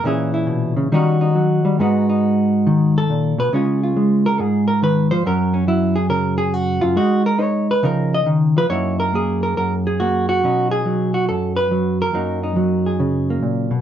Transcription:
0.04 0.90 A#2 medium
0.04 0.92 E3 medium
0.04 0.91 C#4 medium
0.04 0.33 E4 medium
0.04 0.91 G#4 medium
0.34 0.90 E4 medium
0.47 0.76 B2 medium
0.76 0.91 C#3 medium
0.92 1.78 D#3 medium
0.92 1.35 G3 medium
0.92 1.79 C#4 medium
0.92 1.21 D#4 medium
0.92 1.80 F#4 medium
1.21 1.81 D#4 medium
1.35 1.64 F#3 medium
1.65 1.80 G3 medium
1.79 3.09 G#2 medium
1.79 3.01 G#3 soft
1.79 3.52 B3 medium
1.79 2.09 D#4 medium
1.79 2.97 F#4 soft
2.09 3.55 D#4 medium
2.67 3.38 D#3 medium
2.98 3.39 A4 medium
3.10 3.39 A#2 medium
3.38 3.52 B2 medium
3.38 3.53 B4 loud
3.53 4.39 C#3 medium
3.53 3.96 G#3 medium
3.53 5.23 C#4 medium
3.53 3.82 F4 medium
3.53 4.26 G#4 soft
3.83 5.23 F4 medium
3.96 5.10 G#3 medium
4.26 4.40 A#4 loud
4.39 5.23 G#2 medium
4.39 4.67 G#4 medium
4.68 4.82 A#4 medium
4.82 5.11 D#3 medium
4.82 5.11 B4 loud
5.11 5.25 F3 medium
5.11 5.24 C5 loud
5.26 6.82 F#2 medium
5.26 5.66 F#3 medium
5.26 5.52 C#4 medium
5.26 5.54 A#4 medium
5.54 5.67 C#4 medium
5.68 6.94 F#3 medium
5.68 5.96 E4 medium
5.96 6.09 G#4 medium
6.09 6.94 C#3 medium
6.09 6.37 A#4 loud
6.38 6.54 G#4 loud
6.54 6.82 F#4 medium
6.81 6.96 F#2 medium
6.81 6.96 F4 medium
6.96 7.81 G#3 medium
6.96 7.37 D#4 medium
6.96 7.25 F#4 medium
7.26 7.42 A#4 loud
7.39 7.81 D#4 medium
7.39 7.70 C#5 loud
7.71 7.84 B4 loud
7.83 8.69 C#3 medium
7.83 8.26 F3 medium
7.83 8.69 D#4 medium
7.83 8.14 A#4 medium
8.14 8.28 D#5 loud
8.26 8.56 D#3 medium
8.57 8.70 F3 medium
8.57 8.66 B4 loud
8.69 9.57 F#2 medium
8.69 9.12 A#3 soft
8.69 10.44 D#4 soft
8.69 9.15 E4 soft
8.69 8.99 C#5 medium
9.00 9.42 A#4 medium
9.13 9.99 A#3 medium
9.13 9.86 G#4 medium
9.43 9.56 A#4 medium
9.57 10.44 F#2 medium
9.57 9.73 A#4 medium
9.87 10.44 G#4 medium
10.00 10.42 A#3 medium
10.00 10.28 F#4 medium
10.29 10.71 F#4 medium
10.43 11.29 B2 medium
10.43 10.85 F#3 soft
10.43 12.14 C#4 soft
10.43 12.13 D#4 soft
10.71 11.14 G#4 medium
10.85 11.70 F#3 medium
11.14 11.28 F#4 medium
11.29 12.12 F#2 medium
11.29 11.56 A4 medium
11.56 12.00 B4 medium
11.71 12.12 F#3 medium
12.02 12.86 A#4 medium
12.13 13.42 F#2 medium
12.13 12.55 F#3 soft
12.13 13.29 A#3 soft
12.13 12.42 D#4 medium
12.43 13.81 D#4 soft
12.56 13.81 F#3 medium
12.86 13.81 G#4 soft
13.00 13.70 C#3 medium
13.30 13.81 A#3 soft
13.42 13.71 A#2 medium
13.71 13.81 B2 medium

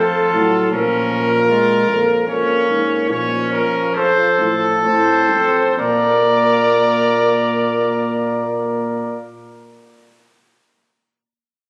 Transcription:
0.00 0.32 F2 loud
0.00 0.34 F3 medium
0.00 0.70 F4 medium
0.00 0.71 A4 medium
0.34 0.71 A2 medium
0.34 0.71 F#3 medium
0.71 1.86 A#2 loud
0.71 1.47 F3 medium
0.71 1.32 C#4 medium
0.71 2.25 A#4 medium
1.49 1.90 G#3 medium
1.49 1.99 F4 medium
1.88 2.27 F2 medium
1.88 2.28 A#3 medium
2.27 2.68 F2 medium
2.27 3.09 A#3 medium
2.27 3.06 C#4 medium
2.27 3.09 C#5 medium
2.69 3.12 G#2 medium
3.10 3.65 A#2 medium
3.10 4.81 F3 medium
3.10 3.97 C#4 medium
3.10 3.52 C#5 medium
3.53 3.95 A#4 medium
3.95 4.41 F2 medium
3.95 5.78 A4 loud
3.95 4.52 C5 medium
4.39 4.84 A2 medium
4.85 5.32 A2 medium
4.85 5.77 C4 medium
4.85 5.75 C5 medium
5.31 5.78 F2 medium
5.78 9.25 A#2 medium
5.78 9.25 A#3 medium
5.78 9.25 A#4 medium
5.78 9.25 D5 medium

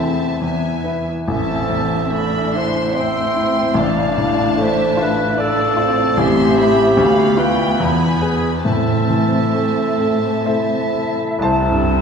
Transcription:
0.00 0.38 E2 medium
0.00 1.08 E2 soft
0.00 0.45 E3 soft
0.00 0.25 A3 soft
0.00 0.39 C4 soft
0.00 0.42 C4 soft
0.00 0.42 E4 soft
0.00 0.41 E5 soft
0.00 0.38 A5 soft
0.41 1.26 E2 soft
0.41 1.07 B3 soft
0.41 1.08 E5 soft
0.41 1.08 G#5 soft
0.84 1.24 E4 soft
0.84 1.24 B4 soft
1.27 3.73 A1 soft
1.27 6.15 A2 soft
1.27 2.52 A2 soft
1.27 2.08 C4 soft
1.27 2.57 A4 medium
1.27 1.68 E5 soft
1.27 2.09 A5 soft
1.69 2.38 E2 soft
1.69 2.94 E5 soft
2.11 2.79 A3 soft
2.11 2.96 D4 soft
2.11 2.55 B5 soft
2.54 3.21 E4 soft
2.54 3.00 C5 medium
2.54 2.94 C6 soft
2.95 3.76 C4 soft
2.95 3.61 C5 soft
2.95 3.81 E5 medium
2.95 3.78 G5 soft
2.95 3.76 C6 soft
3.36 3.77 E4 soft
3.74 6.14 A1 medium
3.74 4.59 F5 soft
3.74 5.37 A5 soft
3.79 5.38 D4 soft
3.79 4.63 D5 medium
4.17 4.83 A2 soft
4.57 5.23 A3 soft
4.57 5.01 C5 medium
4.63 5.41 E5 soft
4.97 5.62 F4 soft
5.02 5.39 B4 medium
5.38 5.78 D4 medium
5.38 6.20 A4 medium
5.38 6.02 D5 medium
5.38 6.18 D5 medium
5.38 6.17 A5 soft
5.77 6.17 C4 medium
5.77 6.18 F4 soft
6.17 6.96 A1 medium
6.17 6.97 A2 medium
6.17 6.97 C4 medium
6.17 7.41 G4 medium
6.17 7.00 E5 medium
6.17 6.59 C6 medium
6.57 6.94 E4 soft
6.57 6.94 C5 soft
6.57 6.96 B5 medium
6.97 7.78 D2 medium
6.97 7.80 D2 medium
6.97 8.66 B3 medium
6.97 8.63 B5 medium
7.01 7.41 F5 medium
7.37 7.76 F4 soft
7.37 7.82 F4 medium
7.37 7.77 B4 soft
7.37 7.82 G5 medium
7.80 8.63 E2 medium
7.80 8.65 E2 soft
7.80 8.23 E4 medium
7.80 8.65 G#5 soft
8.22 8.62 G#4 soft
8.22 8.52 G#4 medium
8.22 8.62 B4 soft
8.65 11.38 A2 soft
8.65 11.20 A2 soft
8.65 9.97 A2 medium
8.65 11.15 C4 soft
8.65 10.43 A4 medium
8.65 11.15 A5 soft
8.69 11.17 E5 soft
9.10 9.81 E3 soft
9.54 10.28 A3 soft
9.99 10.47 A4 soft
10.46 11.45 E4 soft
10.46 10.91 A4 soft
10.46 11.23 C5 soft
10.46 11.38 E5 soft
10.92 11.42 A4 soft
11.39 12.02 C2 medium
11.39 12.02 C2 soft
11.39 12.02 C3 soft
11.39 12.02 G3 soft
11.39 12.02 E4 soft
11.39 12.02 G4 soft
11.39 12.02 A5 medium
11.43 12.02 C4 soft
11.43 12.02 E4 soft
11.43 12.02 A4 medium
11.43 12.02 C5 soft
11.43 12.02 E5 soft
11.72 12.02 G2 soft

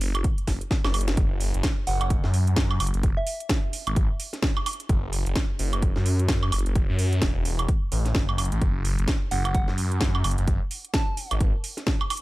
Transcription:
0.00 0.23 F#1 loud
0.00 open hi-hat loud
0.15 closed hi-hat medium
0.15 high woodblock medium
0.24 kick loud
0.24 closed hi-hat medium
0.38 closed hi-hat soft
0.47 0.59 F#1 loud
0.47 kick medium
0.47 snare medium
0.47 open hi-hat loud
0.61 closed hi-hat medium
0.71 kick loud
0.71 snare medium
0.85 1.16 F#1 loud
0.85 snare medium
0.85 high woodblock medium
0.94 open hi-hat loud
0.94 high woodblock medium
1.01 closed hi-hat medium
1.08 snare medium
1.08 closed hi-hat medium
1.17 1.52 F#1 loud
1.17 kick loud
1.17 closed hi-hat medium
1.40 open hi-hat loud
1.54 1.62 F#1 medium
1.54 closed hi-hat medium
1.63 kick loud
1.63 snare loud
1.63 closed hi-hat medium
1.87 2.22 F#1 loud
1.87 1.96 F#5 medium
1.87 open hi-hat loud
2.01 2.07 F#5 medium
2.01 closed hi-hat medium
2.01 high woodblock medium
2.10 kick loud
2.10 closed hi-hat medium
2.24 2.55 F#2 loud
2.24 snare soft
2.34 open hi-hat loud
2.47 closed hi-hat medium
2.56 2.79 F#2 loud
2.56 kick loud
2.56 snare loud
2.71 high woodblock medium
2.80 2.92 F#1 loud
2.80 open hi-hat loud
2.80 high woodblock medium
2.87 closed hi-hat medium
2.94 3.15 F#1 loud
2.94 closed hi-hat medium
3.03 kick loud
3.03 closed hi-hat medium
3.17 3.64 E5 medium
3.27 open hi-hat loud
3.40 closed hi-hat medium
3.49 kick loud
3.49 snare loud
3.49 closed hi-hat medium
3.73 open hi-hat loud
3.87 4.08 G#1 loud
3.87 closed hi-hat medium
3.87 high woodblock medium
3.96 kick loud
3.96 closed hi-hat medium
4.20 open hi-hat loud
4.33 snare soft
4.33 closed hi-hat medium
4.43 kick loud
4.43 snare loud
4.57 high woodblock medium
4.66 open hi-hat loud
4.66 high woodblock medium
4.73 closed hi-hat medium
4.80 closed hi-hat medium
4.89 5.24 F#1 loud
4.89 kick loud
4.89 closed hi-hat medium
5.13 open hi-hat loud
5.26 5.34 F#1 loud
5.26 closed hi-hat medium
5.36 kick loud
5.36 snare loud
5.36 closed hi-hat medium
5.59 5.94 F#1 medium
5.59 open hi-hat loud
5.73 closed hi-hat medium
5.73 high woodblock medium
5.82 kick loud
5.82 closed hi-hat medium
5.96 6.27 F#2 loud
5.96 snare soft
6.06 open hi-hat loud
6.19 closed hi-hat medium
6.28 6.51 F#2 loud
6.28 kick loud
6.28 snare loud
6.43 high woodblock medium
6.52 6.64 F#1 loud
6.52 open hi-hat loud
6.52 high woodblock medium
6.59 closed hi-hat medium
6.66 6.87 F#1 loud
6.66 closed hi-hat medium
6.75 kick loud
6.75 closed hi-hat medium
6.89 7.20 F#2 loud
6.99 open hi-hat loud
7.13 closed hi-hat medium
7.22 7.67 E1 loud
7.22 kick loud
7.22 snare loud
7.22 closed hi-hat medium
7.45 open hi-hat loud
7.59 closed hi-hat medium
7.59 high woodblock medium
7.68 kick loud
7.68 closed hi-hat medium
7.92 8.13 A1 loud
7.92 open hi-hat loud
8.05 snare soft
8.05 closed hi-hat medium
8.15 8.27 F#1 loud
8.15 kick loud
8.15 snare loud
8.29 8.50 F#1 loud
8.29 high woodblock medium
8.38 open hi-hat loud
8.38 high woodblock medium
8.45 closed hi-hat medium
8.52 8.60 A1 loud
8.52 closed hi-hat medium
8.62 8.96 F#1 medium
8.62 kick loud
8.62 closed hi-hat medium
8.85 open hi-hat loud
8.99 9.06 F#1 loud
8.99 closed hi-hat soft
9.08 kick loud
9.08 snare loud
9.08 closed hi-hat medium
9.31 9.66 F#1 medium
9.31 9.40 F#5 medium
9.31 open hi-hat loud
9.45 9.51 F#5 medium
9.45 closed hi-hat soft
9.45 high woodblock medium
9.54 9.73 F#5 medium
9.54 kick loud
9.54 closed hi-hat medium
9.68 10.00 F#2 loud
9.68 snare soft
9.78 open hi-hat loud
9.92 closed hi-hat medium
10.01 10.23 F#2 loud
10.01 kick loud
10.01 snare loud
10.15 high woodblock medium
10.24 10.36 F#1 loud
10.24 open hi-hat loud
10.24 high woodblock medium
10.31 closed hi-hat medium
10.38 10.59 F#1 loud
10.38 closed hi-hat medium
10.48 kick loud
10.48 closed hi-hat medium
10.71 open hi-hat loud
10.85 closed hi-hat medium
10.94 11.31 A5 medium
10.94 kick loud
10.94 snare loud
10.94 closed hi-hat medium
11.17 open hi-hat loud
11.31 11.52 G#1 medium
11.31 closed hi-hat medium
11.31 high woodblock medium
11.41 kick loud
11.41 closed hi-hat medium
11.64 open hi-hat loud
11.77 snare soft
11.77 closed hi-hat medium
11.87 kick loud
11.87 snare loud
12.01 high woodblock medium
12.10 open hi-hat loud
12.10 high woodblock medium
12.17 closed hi-hat medium

